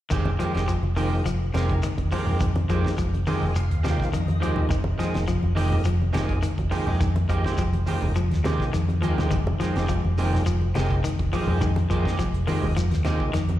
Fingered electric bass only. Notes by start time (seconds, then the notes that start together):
0.11 F1
0.41 muted fingered electric bass stroke
0.55 F1
0.83 F1
1.25 F1
1.55 F1
1.98 F1
2.27 F2
2.69 F2
2.99 F1
3.42 F1
3.71 D#2
4.12 F2
4.41 D#2
4.71 F1
5.00 muted fingered electric bass stroke
5.14 F1
5.43 F1
5.85 F1
6.14 F1
6.58 F1
6.87 F2
7.30 F2
7.59 F1
8.03 F1
8.32 D#2
8.60 muted fingered electric bass stroke
8.75 F2
9.03 D#2
9.32 F1
9.60 muted fingered electric bass stroke
9.75 F1
10.05 F1
10.47 F1
10.76 F1
11.20 F1
11.48 F2
11.91 F2
12.20 F1
12.63 F1
12.91 D#2
13.34 F2